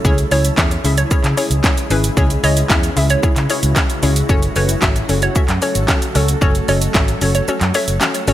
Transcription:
0.04 C#2 C#3 E3 G#3 C#4 E4 G#4 C#5, kick, shaker
0.18 closed hi-hat, shaker
0.31 C#2 C#4 E4 G#4 C#5, open hi-hat, shaker
0.45 closed hi-hat, shaker
0.57 E2 C#4 E4 G#4 C#5 E5, kick, snare, clap, shaker
0.71 closed hi-hat, shaker
0.84 C#2 C#4 E4 G#4 E5, open hi-hat, shaker
0.98 C#5, closed hi-hat, shaker
1.11 C#4 E4 G#4 C#5, kick, shaker
1.24 C#3, clap, closed hi-hat, shaker
1.37 C#4 E4 G#4 C#5, open hi-hat, shaker
1.50 C#2, closed hi-hat, shaker
1.64 C#4 E4 G#4 C#5, kick, snare, clap, shaker
1.77 closed hi-hat, shaker
1.90 G#1 C#4 E4 G#4 B4, open hi-hat, shaker
2.04 closed hi-hat, shaker
2.17 C#2 C#4 E4 F#4 G#4 C#5, kick, shaker
2.30 closed hi-hat, shaker
2.43 C#2 C#4 E4 G#4 C#5 D#5, open hi-hat, shaker
2.57 closed hi-hat, shaker
2.70 E2 C#4 E4 G#4 C#5 E5, kick, snare, clap, shaker
2.83 closed hi-hat, shaker
2.96 C#2 C#4 E4 G#4 E5, open hi-hat, shaker
3.10 C#5, closed hi-hat, shaker
3.23 C#4 E4 G#4 C#5, kick, shaker
3.36 C#3, clap, closed hi-hat, shaker
3.50 C#4 E4 G#4 C#5, open hi-hat, shaker
3.63 C#2, closed hi-hat, shaker
3.76 C#4 E4 G#4 C#5, kick, snare, clap, shaker
3.90 closed hi-hat, shaker
4.03 C#2 C#4 E4 G#4 C#5, open hi-hat, shaker
4.16 closed hi-hat, shaker
4.29 F#1 F#3 A3 C#4 F#4 A4 C#5, kick, shaker
4.43 closed hi-hat, shaker
4.56 F#1 C#4 F#4 A4 B4 C#5, open hi-hat, shaker
4.69 closed hi-hat, shaker
4.82 G#1 C#4 F#4 A4 C#5 E5, kick, snare, clap, shaker
4.96 closed hi-hat, shaker
5.09 F#1 C#4 F#4 A4 C#5, open hi-hat, shaker
5.22 C#5, closed hi-hat, shaker
5.35 C#4 F#4 A4 E5, muted fingered electric bass stroke, kick, shaker
5.48 F#2, clap, closed hi-hat, shaker
5.62 C#4 F#4 A4 C#5, open hi-hat, shaker
5.75 G#1, closed hi-hat, shaker
5.88 C#4 F#4 A4 C#5, kick, snare, clap, shaker
6.02 closed hi-hat, shaker
6.15 C#2 C#4 F#4 A4 C#5, open hi-hat, shaker
6.28 closed hi-hat, shaker
6.41 F#1 C#4 F#4 A4 C#5, kick, shaker
6.55 closed hi-hat, shaker
6.68 F#1 C#4 F#4 A4 C#5 D#5, open hi-hat, shaker
6.82 closed hi-hat, shaker
6.94 G#1 C#4 F#4 A4 C#5 E5, kick, snare, clap, shaker
7.08 closed hi-hat, shaker
7.21 F#1 C#4 F#4 A4 C#5, open hi-hat, shaker
7.35 C#5, closed hi-hat, shaker
7.48 C#4 F#4 A4 C#5, muted fingered electric bass stroke, shaker
7.61 F#2, clap, closed hi-hat, shaker
7.74 C#4 F#4 A4 C#5 E5, open hi-hat, shaker
7.88 F#1, closed hi-hat, shaker
8.01 C#4 F#4 A4 C#5, snare, clap, shaker
8.14 closed hi-hat, shaker
8.28 G#1 C#4 F#4 A4 C#5, open hi-hat, shaker

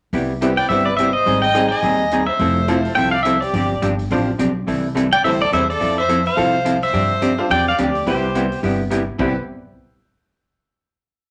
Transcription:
0.13 C2 C3 G3 B3 E4 G4, kick, open hi-hat
0.41 C3 G3 B3 C4 E4 G4 B4, closed hi-hat
0.57 D5 G5, open hi-hat
0.69 G1 C3 G3 B3 E4 G4 C5 E5, kick, open hi-hat
0.85 B4 D5
0.97 C3 G3 B3 E4 G4 C5 E5, closed hi-hat
1.13 C5 D#5
1.26 G#1 D#3 G3 C4 D#4 G#4, kick, open hi-hat
1.42 D#5 G5
1.54 D#3 G3 C4 D#4 G4 G#4 C5, closed hi-hat
1.69 D#5 G#5, open hi-hat
1.83 D#2 D#3 G3 C4 D#4 G#4, kick, open hi-hat
2.11 D#3 G3 C4 D#4 G#4, closed hi-hat
2.27 C5 E5
2.39 F1 F3 C4 E4 A4, kick, open hi-hat
2.68 F3 C4 E4 F4 A4 C5, closed hi-hat
2.85 open hi-hat
2.95 C2 F3 C4 E4 A4 E5 G5, kick, open hi-hat
3.11 D5 F5
3.23 F3 C4 E4 A4 C5 E5, closed hi-hat
3.41 G4 D5, open hi-hat
3.53 G1 C3 F3 C4 D4 G4, kick, open hi-hat
3.82 G1 C3 F3 C4 D4 G4, closed hi-hat
3.99 open hi-hat
4.10 A1 C3 F3 C4 D4 F4 G4 C5, kick, open hi-hat
4.38 B1 C3 F3 C4 D4 G4, closed hi-hat
4.67 C2 C3 E3 G3 C4 E4 A4, kick, open hi-hat
4.95 C3 E3 G3 C4 E4 A4, closed hi-hat
5.13 D5 G5
5.23 D2 C3 E3 G3 C4 E4 G4 A4 C5 E5, kick, open hi-hat
5.42 A4 D5
5.52 E2 C3 E3 G3 C4 E4 A4 C5 E5, closed hi-hat
5.70 A4 D5, open hi-hat
5.80 F2 F3 C4 E4 A4, kick, open hi-hat
5.98 C5 E5
6.09 F3 C4 E4 A4, closed hi-hat
6.26 C5 F5, open hi-hat
6.36 C2 F3 C4 E4 F4 A4 C5, kick, open hi-hat
6.65 F3 C4 E4 A4, closed hi-hat
6.82 C5 E5, open hi-hat
6.93 G2 C3 F3 C4 D4 G4, kick, open hi-hat
7.21 C3 F3 C4 D4 G4, closed hi-hat
7.38 D4 F4 G4 C5
7.50 E2 C3 F3 C4 D4 G4 D5 G5, kick, open hi-hat
7.68 D5 F5
7.78 D2 C3 F3 C4 D4 G4 D5, closed hi-hat
7.95 open hi-hat
8.06 C2 C3 G3 B3 C4 E4 G4 B4 C5, kick, open hi-hat
8.35 C3 G3 B3 E4 G4, closed hi-hat
8.52 open hi-hat
8.63 G1 C3 G3 B3 E4 G4, kick, open hi-hat
8.90 C3 G3 B3 E4 G4, closed hi-hat
9.18 C2 C3 G3 B3 C4 E4 G4 B4, kick

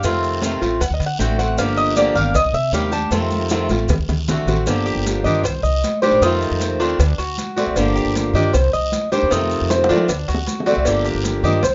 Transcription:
Already playing: F5
0.03 F2 C3 D#3 A3 C4 F4, cowbell, high conga, long guiro, maracas
0.23 high conga, maracas
0.42 C3 D#3 A3 C4 F4, cowbell, high conga, short guiro, maracas
0.61 A1 A3 C4 F4, cowbell, short guiro, maracas
0.80 D2 F#5, muted steel-string acoustic guitar stroke, cowbell, high conga, long guiro, maracas
0.90 D2 D#5
1.00 D3, cowbell, high conga, maracas
1.06 F#5
1.19 A1 D3 A3 C4 F#4 G5, cowbell, high conga, short guiro, maracas
1.38 A3 C4 F#4 F#5, cowbell, high conga, short guiro, maracas
1.58 G1 D3 F3 A#3 D4 G4 F5, cowbell, high conga, long guiro, maracas
1.77 D#5, maracas
1.96 D3 F3 A#3 D4 G4 D5, cowbell, high conga, short guiro, maracas
2.15 G1 A#3 D4 G4 F5, high conga, low conga, short guiro, maracas
2.34 C2 D#5, muted steel-string acoustic guitar stroke, cowbell, high conga, long guiro, maracas
2.45 C2
2.53 C3 E5, high conga, maracas
2.72 D#2 C3 D#3 G3 D4 G4 F5, cowbell, high conga, short guiro, maracas
2.92 G3 D4 G4 A5, cowbell, high conga, short guiro, maracas
3.11 F2 C3 D#3 A3 C4 F4, cowbell, high conga, long guiro, maracas
3.31 high conga, maracas
3.49 C3 D#3 A3 C4 F4, cowbell, high bongo, short guiro, maracas
3.69 A1 A3 C4 F4, cowbell, high bongo, high conga, short guiro, maracas
3.89 D2, muted steel-string acoustic guitar stroke, cowbell, low bongo, low conga, long guiro, maracas
3.99 D2
4.08 D2, cowbell, low bongo, low conga, maracas
4.28 C2 D3 A3 C4 F#4, cowbell, low bongo, low conga, short guiro, maracas
4.46 A1 A3 C4 F#4, cowbell, low bongo, low conga, short guiro, maracas
4.66 G1 D3 F3 A#3 D4 G4, cowbell, long guiro, maracas
4.86 G4, high conga, maracas
4.95 G1
5.06 cowbell, high conga, short guiro, maracas
5.24 G2 F3 A#3 D4 G4 D#5, high conga, low conga, short guiro, maracas
5.44 C2 C5, muted steel-string acoustic guitar stroke, cowbell, high conga, low conga, long guiro, maracas
5.63 C2 D#5, high conga, maracas
5.84 cowbell, high conga, short guiro, maracas
6.02 D#3 G3 D4 G4 C5, cowbell, high conga, short guiro, maracas
6.11 A1
6.21 F2 C3 D#3 A3 C4 D#4 F4, cowbell, high conga, long guiro, maracas
6.42 high conga, maracas
6.51 F2
6.60 C5, cowbell, high conga, short guiro, maracas
6.80 D#2 D#3 A3 C4 D4 F4, cowbell, short guiro, maracas
6.99 D2, muted steel-string acoustic guitar stroke, cowbell, high conga, long guiro, maracas
7.18 D2 F#4, cowbell, high conga, maracas
7.38 cowbell, high conga, short guiro, maracas
7.56 A3 C4 F#4 D5, cowbell, high conga, short guiro, maracas
7.67 C2
7.76 G1 D3 F3 A#3 D4 G4, cowbell, high conga, long guiro, maracas
7.96 G4, high conga, maracas
8.05 G1
8.16 cowbell, high conga, short guiro, maracas
8.34 G2 F3 A#3 D4 G4 D#5, high conga, low conga, short guiro, maracas
8.53 C2 C5, muted steel-string acoustic guitar stroke, cowbell, high conga, long guiro, maracas
8.73 C2 D#5, high conga, maracas
8.92 cowbell, high conga, short guiro, maracas
9.12 D#3 G3 D4 G4 C5, cowbell, high conga, short guiro, maracas
9.22 D#2
9.30 F2 C3 D#3 A3 C4 D#4 F4, cowbell, high conga, long guiro, maracas
9.51 maracas
9.61 F2
9.70 C5, cowbell, high bongo, high conga, short guiro, maracas
9.84 high bongo
9.89 D#3 F3 A3 C4 D4 F4, cowbell, short guiro, maracas
9.96 high bongo
10.09 D2, muted steel-string acoustic guitar stroke, cowbell, high conga, long guiro, maracas
10.28 D2 F#4, cowbell, high conga, maracas
10.34 low bongo
10.47 cowbell, high conga, short guiro, maracas
10.60 low bongo
10.66 A3 C4 F#4 D5, cowbell, high conga, short guiro, maracas
10.72 low bongo
10.76 C2
10.85 G1 D3 F3 A#3 D4 G4, cowbell, high conga, long guiro, maracas
11.05 G4, high conga, maracas
11.15 G1
11.24 cowbell, high conga, short guiro, maracas
11.43 G2 F3 A#3 D4 G4 D#5, high conga, low conga, short guiro, maracas
11.63 C2 C5, muted steel-string acoustic guitar stroke, cowbell, high conga, long guiro, maracas

